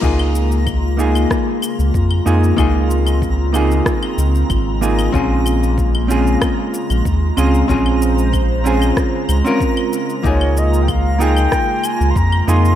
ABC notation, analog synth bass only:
X:1
M:4/4
L:1/16
Q:1/4=94
K:Db
V:1 name="Analog synth bass" clef=bass
D,,8 z3 D,, F,,2 F,,2 | D,,8 z2 D,,2 A,,,4 | B,,,8 z3 B,,, E,,2 D,,2 | B,,,8 z2 D,, z4 z |
D,,8 z3 D,, F,,2 F,,2 |]